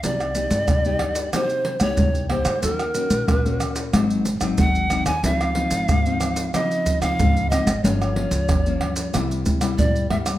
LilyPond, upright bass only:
\new Staff \with { instrumentName = "Upright bass" } { \clef bass \time 4/4 \key c \minor \tempo 4 = 92 c,8. g,16 c,8 r4 r16 c,16 c,8. d,16 | ees,8. bes,,16 bes,,8 r8 aes,,8. aes,,16 aes,,8. ees,16 | des,8. aes,,16 des,8 r4 r16 des,16 des,8. aes,,16 | g,,8. des,16 g,,8 r8 c,8 c8 bes,8 g,8 | }